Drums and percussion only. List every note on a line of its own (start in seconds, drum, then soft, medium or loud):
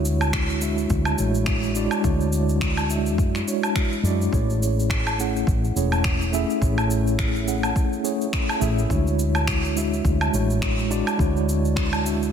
0.05 cabasa medium
0.21 cabasa soft
0.21 low woodblock medium
0.33 finger snap loud
0.33 kick loud
0.33 cabasa soft
0.50 cabasa soft
0.61 cabasa medium
0.78 cabasa soft
0.90 kick loud
0.90 cabasa soft
1.05 cabasa soft
1.05 low woodblock medium
1.18 cabasa medium
1.35 cabasa soft
1.46 finger snap loud
1.46 kick loud
1.46 cabasa soft
1.63 cabasa soft
1.75 cabasa medium
1.91 cabasa soft
1.91 low woodblock medium
2.04 kick loud
2.04 cabasa soft
2.21 cabasa soft
2.33 cabasa medium
2.49 cabasa soft
2.61 finger snap loud
2.61 kick loud
2.61 cabasa soft
2.77 cabasa soft
2.77 low woodblock medium
2.90 cabasa medium
3.06 cabasa soft
3.18 kick loud
3.18 cabasa soft
3.35 finger snap soft
3.35 cabasa soft
3.48 cabasa medium
3.63 cabasa soft
3.63 low woodblock medium
3.75 finger snap loud
3.75 kick loud
3.75 cabasa soft
3.93 cabasa soft
4.05 cabasa medium
4.21 cabasa soft
4.33 kick loud
4.33 cabasa soft
4.50 cabasa soft
4.63 cabasa medium
4.80 cabasa soft
4.90 finger snap medium
4.90 kick loud
4.90 cabasa soft
5.07 cabasa soft
5.07 low woodblock medium
5.20 cabasa medium
5.36 cabasa soft
5.47 kick loud
5.47 cabasa soft
5.64 cabasa soft
5.77 cabasa medium
5.92 cabasa soft
5.92 low woodblock medium
6.04 finger snap loud
6.04 kick loud
6.04 cabasa soft
6.22 cabasa soft
6.34 cabasa medium
6.50 cabasa soft
6.62 kick loud
6.62 cabasa soft
6.78 cabasa soft
6.78 low woodblock medium
6.90 cabasa medium
7.07 cabasa soft
7.19 finger snap medium
7.19 kick loud
7.19 cabasa soft
7.36 cabasa soft
7.48 cabasa medium
7.63 cabasa soft
7.63 low woodblock medium
7.76 kick medium
7.76 cabasa soft
7.93 cabasa soft
8.05 cabasa medium
8.21 cabasa soft
8.33 finger snap medium
8.33 kick loud
8.33 cabasa soft
8.49 cabasa soft
8.49 low woodblock medium
8.62 cabasa medium
8.78 cabasa soft
8.90 kick loud
8.90 cabasa soft
9.07 cabasa soft
9.19 cabasa medium
9.35 cabasa soft
9.35 low woodblock medium
9.47 finger snap loud
9.47 kick medium
9.47 cabasa soft
9.65 cabasa soft
9.77 cabasa medium
9.93 cabasa soft
10.05 kick medium
10.05 cabasa soft
10.21 cabasa soft
10.21 low woodblock medium
10.34 cabasa medium
10.50 cabasa soft
10.62 finger snap loud
10.62 kick loud
10.62 cabasa soft
10.79 cabasa soft
10.91 cabasa medium
11.07 cabasa soft
11.07 low woodblock medium
11.19 kick loud
11.19 cabasa soft
11.37 cabasa soft
11.49 cabasa medium
11.65 cabasa soft
11.76 finger snap loud
11.76 kick loud
11.76 cabasa soft
11.93 cabasa soft
11.93 low woodblock medium
12.06 cabasa medium
12.23 cabasa soft